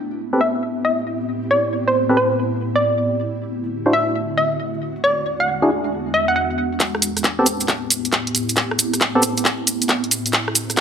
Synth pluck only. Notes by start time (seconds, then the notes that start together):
0.41 E5
0.85 E5
1.51 D5
1.88 C5
2.17 C5
2.76 D5
3.93 E5
4.38 E5
5.04 D5
5.40 F#5
6.14 E5
6.28 F#5
6.36 F#5